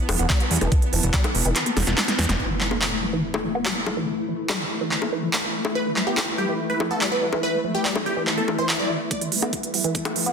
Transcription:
Already playing: B3 E4 B4 A5
0.09 E1 F3, open hi-hat, high bongo
0.19 E1 B3, closed hi-hat
0.30 G3, kick, clap, closed hi-hat
0.40 B3, closed hi-hat
0.51 E2 G3, open hi-hat
0.56 closed hi-hat
0.61 E1 E3, closed hi-hat, high bongo
0.72 E3, kick, closed hi-hat
0.82 closed hi-hat
0.93 E1 F3, open hi-hat
1.03 E1, closed hi-hat
1.14 G3, kick, clap, closed hi-hat
1.24 E3, closed hi-hat, high bongo
1.35 E1, open hi-hat
1.45 E1 E3, closed hi-hat
1.56 E3, clap, closed hi-hat
1.66 B3, closed hi-hat
1.77 E1 F3, snare, open hi-hat, high bongo
1.87 E1 F4, snare, closed hi-hat
1.98 snare, clap, closed hi-hat
2.08 snare, closed hi-hat
2.19 E2, snare, open hi-hat
2.24 closed hi-hat
2.29 E1, snare, closed hi-hat, zap
2.40 A3 E4, impact
2.50 E3
2.54 B4
2.61 G3, clap
2.71 B3, high bongo
2.82 clap
3.03 G3
3.13 E3 E5
3.34 high bongo
3.44 F3
3.55 B3
3.65 G3, clap
3.76 B3
3.86 G3, high bongo
3.97 E3
4.07 E3
4.28 F3
4.49 G3, clap, high bongo
4.60 E3
4.81 E3
4.91 E3, clap
5.02 B3, high bongo
5.12 E3
5.23 F3
5.33 clap
5.65 high bongo
5.75 B4
5.86 E3
5.96 G3, clap
6.07 B3 G4
6.17 clap, high bongo
6.38 G3 G4
6.49 E3
6.70 B4
6.80 F3, high bongo
6.91 B3 A4
7.01 G3, clap
7.12 B3 B4
7.22 G3
7.33 E3, high bongo
7.43 E3 B4
7.64 F3
7.75 G4
7.85 G3, clap
7.96 E3, high bongo
8.06 G4
8.17 E3
8.27 E3, clap, swell
8.38 B3 A4
8.48 E3, high bongo
8.58 E3 C5
8.69 clap
8.79 G3 D5
8.90 E3
9.11 A3, kick, closed hi-hat, riser
9.21 E3, closed hi-hat
9.32 G3, open hi-hat
9.42 B3, closed hi-hat, high bongo
9.53 kick, closed hi-hat
9.63 closed hi-hat
9.74 G3, open hi-hat
9.84 E3, closed hi-hat
9.95 kick, closed hi-hat
10.05 closed hi-hat, high bongo
10.16 F3, open hi-hat
10.26 B3, closed hi-hat

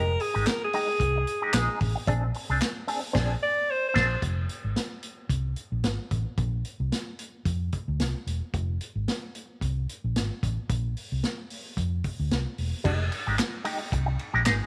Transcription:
Already playing: F1 G#3 A#4
0.09 muted clean electric guitar stroke
0.20 G#4, muted clean electric guitar stroke, open hi-hat
0.34 G#1 G#3 D#4 G4
0.46 A#4, snare, clap, closed hi-hat
0.64 G#4
0.73 G#3 D#4 G4, open hi-hat
0.89 muted clean electric guitar stroke
1.00 C2, muted clean electric guitar stroke, kick, closed hi-hat
1.16 muted clean electric guitar stroke
1.27 closed hi-hat
1.42 G#3 D#4 G4
1.53 A#1 G#3 D#4 G#4, snare, clap, closed hi-hat
1.80 A1, muted clean electric guitar stroke, kick, open hi-hat
1.95 muted clean electric guitar stroke
2.07 A#1 C4 D4 G#4, kick, closed hi-hat
2.24 muted clean electric guitar stroke
2.34 muted clean electric guitar stroke, open hi-hat
2.50 C2 C4 D4 G#4
2.62 muted clean electric guitar stroke, snare, clap, closed hi-hat
2.88 C4 D4 G#4, open hi-hat
3.02 muted clean electric guitar stroke
3.13 A#1 C4 D4 G#4, kick, snare, crash
3.42 D5
3.71 C5
3.89 C5
3.94 A#1 C4 D4 G#4, kick, snare, crash
4.22 F1, kick, closed hi-hat
4.49 closed hi-hat
4.64 G#1
4.76 snare, closed hi-hat
5.03 closed hi-hat
5.29 C2, kick, closed hi-hat
5.56 closed hi-hat
5.72 A#1
5.83 G#1, snare, closed hi-hat
6.11 A1, kick, closed hi-hat
6.38 A#1, kick, closed hi-hat
6.65 closed hi-hat
6.80 C2
6.92 snare, closed hi-hat
7.19 closed hi-hat
7.45 F2, kick, closed hi-hat
7.72 kick, closed hi-hat
7.88 D2
8.00 C2, snare, closed hi-hat
8.26 E1, closed hi-hat
8.54 F1, kick, closed hi-hat
8.81 closed hi-hat
8.95 G#1
9.08 snare, closed hi-hat
9.35 closed hi-hat
9.61 C2, kick, closed hi-hat
9.89 closed hi-hat
10.04 A#1
10.16 G#1, snare, closed hi-hat
10.43 A1, kick, closed hi-hat
10.69 A#1, kick, closed hi-hat
10.97 open hi-hat
11.12 C2
11.23 snare, closed hi-hat
11.50 open hi-hat
11.77 F2, kick, closed hi-hat
12.04 kick, open hi-hat
12.20 D2
12.31 C2, snare, closed hi-hat
12.58 E1, open hi-hat
12.84 F1 G#3 D#4 G4, kick, crash
13.00 muted clean electric guitar stroke
13.11 muted clean electric guitar stroke, open hi-hat, ride
13.27 G#1 G#3 D#4 G4
13.39 snare, clap, hi-hat pedal, ride
13.65 G#3 D#4 G4, open hi-hat, ride
13.81 muted clean electric guitar stroke
13.92 C2, muted clean electric guitar stroke, kick, hi-hat pedal, ride
14.06 muted clean electric guitar stroke
14.19 ride
14.33 A#1 G#3 D#4 G4
14.45 G#1 G#3 D#4 G#4, snare, clap, ride

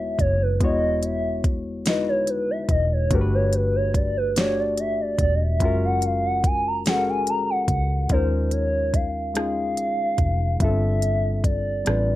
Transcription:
Already playing: E1 G#3 B3 D#4 E4 F#4 B4 C#5 E5
0.19 F#1 C#5, kick, closed hi-hat
0.42 B4
0.60 E1 G#3 B3 E4 F#4 D#5, kick, closed hi-hat
0.65 C#5
1.03 E5, closed hi-hat
1.44 kick, closed hi-hat
1.86 G#3 D#4 E4 F#4 D#5, snare, closed hi-hat
1.90 B4
2.09 C#5
2.27 B4, closed hi-hat
2.51 E5
2.69 E1 D#5, kick, closed hi-hat
2.93 C#5
3.11 G1 A3 D4 F#4 G4 B4, kick, closed hi-hat
3.15 A#4
3.21 B4
3.35 C#5
3.53 B4, closed hi-hat
3.76 C#5
3.94 D5, kick, closed hi-hat
4.17 B4
4.36 A3 D4 F#4 G4 C#5, snare, closed hi-hat
4.40 D5
4.59 D5
4.78 E5, closed hi-hat
5.01 D5
5.19 E1 D5, kick, closed hi-hat
5.35 D#5
5.43 E5
5.60 F#1 G#3 C#4 F4 F#4, kick, closed hi-hat
5.65 A#4
5.85 F#5
6.02 F5, closed hi-hat
6.27 F#5
6.44 G#5, kick, closed hi-hat
6.67 A#5
6.86 G#3 C#4 F#4 G#4 F#5, snare, closed hi-hat
6.90 A4
6.97 A#4
7.09 G#5
7.27 A#5, closed hi-hat
7.50 F#5
7.68 C#2, kick, closed hi-hat
8.09 D#2 G#3 C#4 D#4 F4 C5, kick, closed hi-hat
8.14 A#4
8.51 C#5, closed hi-hat
8.94 F5, kick, closed hi-hat
9.34 G#3 C#4 D#4 F4 F5, cross-stick, closed hi-hat
9.39 G#4
9.77 A#1, closed hi-hat
10.18 F1, kick, closed hi-hat
10.60 G1 G3 B3 D4 F4 E5, kick, closed hi-hat
10.64 C4 A4
11.02 closed hi-hat
11.43 D5, kick, closed hi-hat
11.85 A1 G3 C4 D4 F4 D5, cross-stick, closed hi-hat
11.89 B4

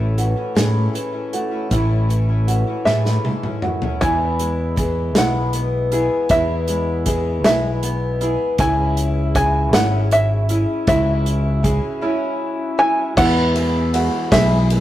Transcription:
Already playing: A1 A2 E3 A3 E4 E5
0.00 A3 C#4
0.18 E3 F#4, closed hi-hat
0.36 A3 C#4 E4
0.55 A2 E3 A3 C#4 E4 G#4, snare, closed hi-hat
0.94 E3 A3 C#4 E4, closed hi-hat
1.13 A3 C#4 E4
1.33 A3 F#4, closed hi-hat
1.51 A3 C#4 E4
1.70 A1 A2 E3 A3 C#4 E4, kick, closed hi-hat
2.09 E3 A3 C#4 E4, closed hi-hat
2.29 A3 C#4 E4
2.47 E3 F#4, closed hi-hat
2.67 A3 C#4 E4
2.85 A2 E3 A3 C#4 E4 G#4 E5, snare
3.05 snare
3.24 G#2 E3 A3 C#4 E4, high tom
3.43 A3 C#4 E4, mid tom
3.62 F#2 F#4, mid tom
3.82 A3 C#4 E4, floor tom
4.01 E2 B2 E3 G#3 B3 E4 G#5, kick, closed hi-hat
4.39 G#3, closed hi-hat
4.76 E3 G#3 B3 E4 G#4, kick, closed hi-hat
5.15 B1 E2 B2 E3 G#3 B3 E4 F#5, snare, closed hi-hat
5.53 B3, closed hi-hat
5.92 E3 G#3 B3 E4 G#4, closed hi-hat
6.29 E2 B2 E3 G#3 B3 E4 E5, kick, closed hi-hat
6.68 G#3, closed hi-hat
7.06 E3 G#3 B3 E4 G#4, kick, closed hi-hat
7.44 B1 E2 B2 E3 G#3 B3 E4 E5, snare, closed hi-hat
7.83 B3, closed hi-hat
8.21 E3 G#3 B3 E4 G#4, closed hi-hat
8.58 C#2 C#3 E3 G#3 C#4 E4 G#4 E5 G#5, kick, closed hi-hat
8.97 closed hi-hat
9.35 E3 G#3 C#4 E4 G#4 G#5, kick, closed hi-hat
9.73 G#1 C#3 E3 G#3 C#4 E4 F#5, snare, closed hi-hat
10.11 E5, closed hi-hat
10.49 G#3 C#4 E4, closed hi-hat
10.87 C#2 C#3 E3 G#3 C#4 E4 F#4 E5, kick, closed hi-hat
11.26 closed hi-hat
11.63 E3 G#3 C#4 E4 G#4, kick, closed hi-hat
12.01 C#3 E3 G#3 C#4 E4
12.78 G#3 C#4 E4 G#5
13.16 E2 B2 E3 G#3 B3 E4 G#4 B4 E5 F#5, kick, crash
13.54 G#3 B3 E4 B4 E5, ride
13.93 E3 G#3 B3 E4 F#4 B4 E5, ride
14.31 B1 E2 B2 E3 G#3 B3 E4 G#4 B4 E5, kick, snare, ride
14.70 G#3 B3 E4 B4 E5, ride

